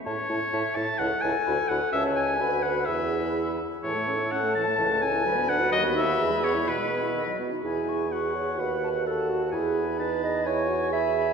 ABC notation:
X:1
M:2/4
L:1/16
Q:1/4=127
K:A
V:1 name="Flute"
a2 a2 a2 a2 | a2 a2 b2 b2 | a4 b4 | b6 z2 |
a8- | a4 b4- | [K:E] b8- | b4 b2 z2 |
b2 c'2 c'4 | b2 a2 a4 | b8 | c'4 b2 b2 |]
V:2 name="Oboe"
c6 a2 | f2 g4 f2 | e2 g4 f2 | e6 z2 |
c4 f2 a2- | a2 g4 f2 | [K:E] d2 e4 c2 | B6 z2 |
g4 f4- | f4 f4 | g4 a4 | g4 g4 |]
V:3 name="Clarinet"
z4 e4 | A8 | c4 B4 | G6 z2 |
A8- | A4 B4 | [K:E] F4 G4 | G4 d2 F2 |
G6 c2 | B4 A2 F2 | G4 B2 d2 | c4 e4 |]
V:4 name="French horn"
E2 E2 E2 E2 | E2 E2 F2 F2 | C4 F4 | E6 z2 |
E, A, C E C A, E, A, | E, A, C E F, B, D F | [K:E] F, B, D F E, G, B, E | E, G, B, E D, F, B, D |
E4 F2 G2 | F8 | E4 D4 | E2 F2 G4 |]
V:5 name="Bassoon" clef=bass
A,,2 A,,2 A,,2 A,,2 | C,,2 C,,2 D,,2 D,,2 | C,,4 D,,4 | E,,6 z2 |
A,,8 | C,,4 D,,4 | [K:E] D,,4 E,,4 | B,,6 z2 |
E,,8 | D,,8 | E,,8- | E,,8 |]